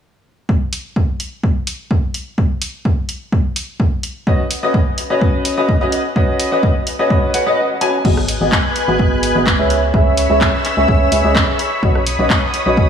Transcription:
0.49 kick loud
0.73 open hi-hat loud
0.96 kick loud
1.20 open hi-hat loud
1.43 kick loud
1.67 open hi-hat loud
1.91 kick loud
2.14 open hi-hat medium
2.38 kick loud
2.62 open hi-hat loud
2.85 kick loud
3.09 open hi-hat loud
3.32 kick loud
3.56 open hi-hat loud
3.80 kick loud
4.03 open hi-hat loud
4.27 4.40 C#4 medium
4.27 4.40 F#4 medium
4.27 4.40 B4 medium
4.27 4.40 D#5 medium
4.27 kick loud
4.51 open hi-hat loud
4.63 4.74 C#4 medium
4.63 4.74 F#4 medium
4.63 4.74 B4 medium
4.63 4.74 D#5 loud
4.74 kick loud
4.98 open hi-hat loud
5.10 5.55 C#4 medium
5.10 5.55 F#4 medium
5.10 5.55 B4 medium
5.10 5.55 D#5 loud
5.21 kick loud
5.45 open hi-hat loud
5.57 5.69 C#4 medium
5.57 5.69 F#4 medium
5.57 5.69 B4 medium
5.57 5.69 D#5 loud
5.69 kick loud
5.81 6.00 C#4 loud
5.81 6.00 F#4 medium
5.81 6.00 B4 medium
5.81 6.00 D#5 loud
5.92 open hi-hat loud
6.16 6.49 C#4 medium
6.16 6.49 F#4 medium
6.16 6.49 B4 medium
6.16 6.49 D#5 loud
6.16 kick loud
6.40 open hi-hat loud
6.52 6.71 C#4 medium
6.52 6.71 F#4 medium
6.52 6.71 B4 medium
6.52 6.71 D#5 loud
6.63 kick loud
6.87 open hi-hat loud
6.99 7.09 C#4 medium
6.99 7.09 F#4 medium
6.99 7.09 B4 medium
6.99 7.09 D#5 loud
7.10 7.30 C#4 medium
7.10 7.30 F#4 medium
7.10 7.30 B4 medium
7.10 7.30 D#5 medium
7.10 kick loud
7.34 7.45 C#4 medium
7.34 7.45 F#4 medium
7.34 7.45 B4 medium
7.34 7.45 F#5 medium
7.34 open hi-hat loud
7.46 7.58 C#4 medium
7.46 7.58 F#4 medium
7.46 7.58 B4 medium
7.46 7.58 D#5 loud
7.81 7.94 C#4 medium
7.81 7.94 F#4 medium
7.81 7.94 B4 medium
7.81 7.94 G#5 medium
7.81 open hi-hat loud
8.05 8.38 G#1 medium
8.05 8.18 B3 medium
8.05 8.18 F#4 medium
8.05 8.18 G#4 medium
8.05 9.69 B4 medium
8.05 8.18 D#5 medium
8.05 9.69 G#5 medium
8.05 9.69 F#6 medium
8.05 kick loud
8.05 crash medium
8.17 cross-stick medium
8.28 open hi-hat loud
8.41 8.50 G#1 medium
8.41 8.52 B3 medium
8.41 8.52 F#4 medium
8.41 8.52 G#4 medium
8.41 8.52 D#5 loud
8.52 kick loud
8.52 clap loud
8.76 open hi-hat medium
8.88 9.33 G#1 loud
8.88 9.33 B3 loud
8.88 9.33 F#4 medium
8.88 9.33 G#4 medium
8.88 9.33 D#5 loud
8.99 kick loud
9.23 open hi-hat loud
9.35 9.57 G#1 medium
9.35 9.47 B3 medium
9.35 9.47 F#4 medium
9.35 9.47 G#4 medium
9.35 9.47 D#5 loud
9.47 kick loud
9.47 clap loud
9.59 9.92 C#2 loud
9.59 9.78 C#4 medium
9.59 9.78 G#4 medium
9.59 9.78 B4 medium
9.59 9.78 E5 loud
9.70 12.89 C#5 medium
9.70 12.89 B5 medium
9.70 11.81 E6 medium
9.70 open hi-hat medium
9.94 10.27 C#2 medium
9.94 10.27 C#4 medium
9.94 10.27 G#4 medium
9.94 10.27 B4 medium
9.94 10.27 E5 loud
9.94 kick loud
10.17 open hi-hat loud
10.30 10.46 C#2 loud
10.30 10.49 C#4 medium
10.30 10.49 G#4 medium
10.30 10.49 B4 medium
10.30 10.49 E5 loud
10.41 kick loud
10.41 clap loud
10.65 clap soft
10.65 open hi-hat medium
10.77 10.86 C#2 medium
10.77 10.87 C#4 medium
10.77 10.87 G#4 medium
10.77 10.87 B4 medium
10.77 10.87 E5 loud
10.88 11.10 C#2 medium
10.88 11.08 C#4 medium
10.88 11.08 G#4 medium
10.88 11.08 B4 medium
10.88 11.08 E5 medium
10.88 kick loud
11.12 11.22 C#2 medium
11.12 11.21 C#4 medium
11.12 11.21 G#4 medium
11.12 11.21 B4 medium
11.12 11.21 E5 medium
11.12 open hi-hat loud
11.24 11.41 C#2 loud
11.24 11.43 C#4 loud
11.24 11.43 G#4 medium
11.24 11.43 B4 medium
11.24 11.43 D#5 loud
11.36 kick loud
11.36 cross-stick medium
11.36 clap loud
11.59 open hi-hat medium
11.83 12.16 B1 medium
11.83 11.95 C#4 medium
11.83 11.95 F#4 medium
11.83 11.95 B4 medium
11.83 11.95 D#5 medium
11.83 12.89 D#6 medium
11.83 kick loud
11.95 cross-stick medium
12.07 open hi-hat loud
12.19 12.28 B1 medium
12.19 12.30 C#4 medium
12.19 12.30 F#4 medium
12.19 12.30 B4 medium
12.19 12.30 D#5 loud
12.30 kick loud
12.30 clap loud
12.54 open hi-hat medium
12.66 12.89 B1 medium
12.66 12.89 C#4 medium
12.66 12.89 F#4 medium
12.66 12.89 B4 medium
12.66 12.89 D#5 loud
12.77 kick loud

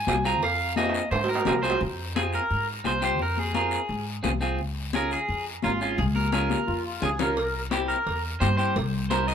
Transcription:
0.00 0.25 G#5 medium
0.07 0.42 C2 loud
0.07 0.14 C4 medium
0.07 0.14 F4 medium
0.07 0.14 G#4 medium
0.07 cowbell medium
0.07 high conga medium
0.07 low timbale medium
0.07 short guiro medium
0.24 0.43 C4 medium
0.24 0.43 F4 medium
0.24 0.44 G#4 medium
0.24 0.43 A#5 medium
0.24 short guiro medium
0.42 0.98 F2 loud
0.42 0.77 F5 medium
0.42 cowbell loud
0.42 long guiro medium
0.76 1.01 C4 medium
0.76 1.01 F4 medium
0.76 1.02 G#4 medium
0.76 1.11 D#5 medium
0.76 cowbell medium
0.76 high conga medium
0.76 high timbale medium
0.76 short guiro medium
0.89 high timbale medium
0.94 short guiro medium
1.11 1.39 G#2 medium
1.11 1.29 C5 medium
1.11 cowbell medium
1.11 high timbale medium
1.11 long guiro medium
1.24 low timbale medium
1.29 1.63 A#4 medium
1.35 low timbale loud
1.45 1.74 C2 medium
1.45 1.53 C4 medium
1.45 1.53 F4 medium
1.45 1.53 G#4 medium
1.45 cowbell medium
1.45 high conga medium
1.45 low conga medium
1.45 low timbale loud
1.45 short guiro medium
1.63 1.81 C4 medium
1.63 1.81 F4 medium
1.63 1.81 G#4 medium
1.63 1.80 C5 loud
1.63 short guiro medium
1.70 low timbale medium
1.81 2.37 F2 loud
1.81 high conga soft
1.81 long guiro medium
2.15 2.40 C4 medium
2.15 2.40 F4 medium
2.15 2.21 G#4 medium
2.15 2.41 G#4 medium
2.15 high conga loud
2.15 short guiro medium
2.33 2.66 A#4 medium
2.33 short guiro medium
2.50 2.79 G#2 medium
2.50 high conga soft
2.50 long guiro medium
2.84 3.20 C2 medium
2.84 2.91 C4 medium
2.84 2.91 F4 medium
2.84 2.92 G#4 medium
2.84 3.02 C5 loud
2.84 high conga medium
2.84 short guiro medium
3.01 3.20 C4 medium
3.01 3.21 F4 medium
3.01 3.21 G4 medium
3.01 3.22 C5 medium
3.01 short guiro medium
3.19 3.75 F2 loud
3.19 3.39 A#4 medium
3.19 high conga soft
3.19 long guiro medium
3.37 3.55 G#4 medium
3.37 high conga medium
3.54 3.79 C4 medium
3.54 3.79 F4 medium
3.54 4.04 G#4 medium
3.54 3.79 A#4 medium
3.54 high conga medium
3.54 short guiro medium
3.71 short guiro medium
3.89 4.17 G#2 medium
3.89 high conga soft
3.89 long guiro medium
4.23 4.59 C2 medium
4.23 4.30 C4 medium
4.23 4.30 F4 medium
4.23 4.30 G#4 medium
4.23 high conga medium
4.23 low conga medium
4.23 short guiro medium
4.41 4.59 C4 medium
4.41 4.59 F4 medium
4.41 4.59 G#4 medium
4.41 short guiro medium
4.58 5.14 C#2 loud
4.58 high conga soft
4.58 long guiro medium
4.93 5.18 C#4 medium
4.93 5.18 F4 medium
4.93 5.19 G#4 medium
4.93 5.11 A#4 loud
4.93 high conga loud
4.93 short guiro medium
5.11 5.44 G#4 loud
5.11 short guiro medium
5.28 5.56 F2 medium
5.28 high conga soft
5.28 long guiro medium
5.62 6.00 G#1 medium
5.62 5.70 C#4 medium
5.62 5.80 F4 medium
5.62 5.70 F4 medium
5.62 5.70 A#4 medium
5.62 high conga medium
5.62 short guiro medium
5.81 5.99 C#4 medium
5.81 5.99 F4 medium
5.81 6.00 F4 medium
5.81 6.00 G#4 medium
5.81 short guiro medium
5.98 6.54 C#2 loud
5.98 6.03 G#4 medium
5.98 high conga soft
5.98 long guiro medium
6.15 6.31 A#4 medium
6.15 high conga medium
6.32 6.57 C#4 medium
6.32 6.58 F4 medium
6.32 6.58 G#4 medium
6.32 6.81 A#4 medium
6.32 high conga medium
6.32 short guiro medium
6.50 high conga medium
6.50 short guiro medium
6.67 6.96 F2 medium
6.67 6.84 F4 medium
6.67 long guiro medium
6.85 7.03 F4 medium
7.02 7.37 C#2 medium
7.02 7.08 C#4 medium
7.02 7.08 F4 medium
7.02 7.18 G#4 medium
7.02 7.09 G#4 medium
7.02 low conga medium
7.02 short guiro medium
7.19 7.37 C#4 medium
7.19 7.37 F4 medium
7.19 7.37 A#4 loud
7.19 7.37 A#4 medium
7.19 low conga medium
7.19 short guiro medium
7.37 7.92 C2 loud
7.37 7.62 A#4 medium
7.37 cowbell loud
7.37 high conga soft
7.37 long guiro medium
7.71 7.96 C4 medium
7.71 7.96 E4 medium
7.71 7.77 G4 medium
7.71 7.96 G4 medium
7.71 cowbell medium
7.71 high conga loud
7.71 short guiro medium
7.88 8.21 A#4 medium
7.88 short guiro medium
8.06 8.34 E2 medium
8.06 cowbell medium
8.06 high conga soft
8.06 long guiro medium
8.40 8.77 G2 medium
8.40 8.47 C4 medium
8.40 8.47 E4 medium
8.40 8.47 G4 medium
8.40 8.56 C5 loud
8.40 cowbell medium
8.40 high conga medium
8.40 short guiro medium
8.57 8.76 C4 medium
8.57 8.77 E4 medium
8.57 8.77 G4 medium
8.57 8.74 C5 medium
8.57 short guiro medium
8.76 9.31 C2 loud
8.76 cowbell loud
8.76 high conga soft
8.76 long guiro medium
9.10 9.34 C4 medium
9.10 9.34 E4 medium
9.10 9.34 A#4 medium
9.10 9.28 C5 medium
9.10 cowbell medium
9.10 high conga medium
9.10 short guiro medium
9.28 9.34 D#5 loud
9.28 short guiro medium

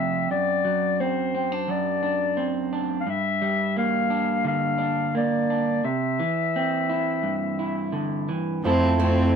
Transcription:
0.00 0.30 F2 soft
0.00 0.26 C3 medium
0.00 0.26 F3 medium
0.00 0.26 A3 soft
0.00 0.99 C4 soft
0.00 0.30 E5 medium
0.31 1.67 F#2 medium
0.31 1.02 D5 medium
0.65 3.04 F#3 medium
1.00 1.33 C4 soft
1.00 1.72 C5 medium
1.35 1.52 C4 soft
1.52 2.01 D4 soft
1.68 3.04 F#2 medium
1.68 2.74 D5 medium
2.03 2.72 D4 soft
2.37 3.03 C4 medium
2.73 3.04 D4 soft
3.01 3.11 F5 medium
3.07 5.81 G2 medium
3.07 3.78 E5 medium
3.42 5.81 G3 medium
3.77 5.14 A#3 soft
3.77 4.43 F5 medium
4.10 4.77 D4 soft
4.44 5.80 D3 medium
4.44 5.13 F5 medium
4.78 5.49 D4 soft
5.15 5.81 A#3 medium
5.15 5.87 D5 medium
5.50 5.81 D4 soft
5.84 6.20 C3 medium
5.84 7.95 E5 medium
6.20 8.28 E3 medium
6.56 8.61 C4 soft
6.89 7.58 E4 soft
7.23 8.60 G2 medium
7.59 8.61 E4 soft
7.92 8.29 D3 medium
8.29 8.64 E3 soft
8.64 9.36 F2 medium
8.64 9.36 F3 medium
8.64 8.99 A3 medium
8.64 8.98 C4 medium
8.64 9.36 E4 medium
8.64 9.34 E4 soft
8.64 9.36 A4 medium
8.64 9.36 C5 medium
8.64 9.36 E5 medium
8.64 9.36 A5 medium
8.99 9.36 A3 medium
8.99 9.36 C4 soft
8.99 9.36 C4 medium

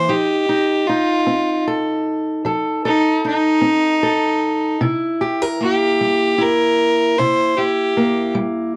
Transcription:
0.00 0.11 C5 medium
0.09 0.80 F3 medium
0.09 0.48 D#4 medium
0.09 0.88 G4 medium
0.49 0.88 D#4 medium
0.87 3.24 D#4 medium
0.87 1.64 F4 medium
1.27 1.98 C4 medium
1.68 2.45 A4 medium
2.45 3.16 F3 medium
2.45 2.84 A4 medium
2.85 3.24 D#4 medium
2.85 4.02 A4 medium
3.25 4.77 D#4 medium
3.25 4.79 D#4 medium
3.61 4.33 C4 medium
4.03 4.77 A4 medium
4.81 5.52 C3 medium
4.81 6.38 E4 medium
5.21 5.42 G4 medium
5.42 8.76 A#4 medium
5.61 7.96 A#3 medium
5.61 6.43 G4 medium
6.01 6.71 G3 medium
6.38 7.19 E4 medium
6.38 7.20 A#4 medium
7.18 7.90 C3 medium
7.18 7.57 E4 medium
7.18 7.58 C5 medium
7.57 8.75 E4 medium
7.57 8.34 G4 medium
7.97 8.76 A#3 medium
8.35 8.76 G3 medium

